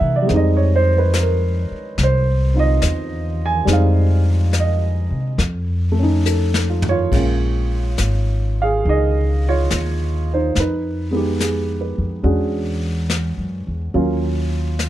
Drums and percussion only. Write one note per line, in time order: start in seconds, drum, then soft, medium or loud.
0.29 brush sweep soft
0.29 snare soft
1.14 snare soft
1.14 hi-hat pedal soft
1.98 brush sweep soft
1.98 snare soft
2.82 snare soft
2.82 hi-hat pedal medium
3.67 brush sweep soft
3.67 snare soft
4.53 snare soft
4.53 hi-hat pedal soft
5.38 brush sweep soft
5.38 snare soft
6.26 hi-hat pedal medium
6.54 snare soft
6.82 floor tom medium
7.12 brush sweep soft
7.12 kick medium
7.12 ride soft
7.98 snare soft
7.98 hi-hat pedal soft
8.85 brush sweep soft
9.71 snare soft
9.71 hi-hat pedal soft
10.55 brush sweep soft
10.55 snare soft
11.40 snare soft
11.40 hi-hat pedal soft
12.25 brush sweep soft
13.10 snare soft
13.10 hi-hat pedal soft
13.95 brush sweep soft
14.79 snare soft
14.79 hi-hat pedal soft